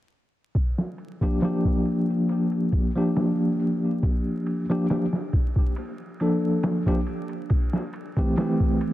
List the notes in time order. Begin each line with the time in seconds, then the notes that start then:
0.55 kick, ride
0.78 snare
0.98 ride
1.21 F3 A#3 D4 G4, kick
1.42 F3 A#3 D4 G4, snare, ride
1.65 kick
1.85 ride
2.29 ride
2.52 ride
2.72 kick, ride
2.95 F3 A#3 D4 G4
3.16 snare, ride
3.59 open hi-hat
4.03 kick, ride
4.46 ride
4.70 F3 A#3 D4 G4
4.90 F3 A#3 D4 G4, snare, ride
5.13 snare
5.33 kick, ride
5.56 kick
5.76 ride
6.20 F3 A#3 D4 A4, ride
6.63 snare, ride
6.86 F3 A#3 D4 G4, kick
7.07 ride
7.29 ride
7.50 kick, ride
7.73 snare
7.93 ride
8.17 E3 A3 C4 G4, kick
8.37 E3 A3 C4 G4, snare, ride
8.60 kick
8.81 ride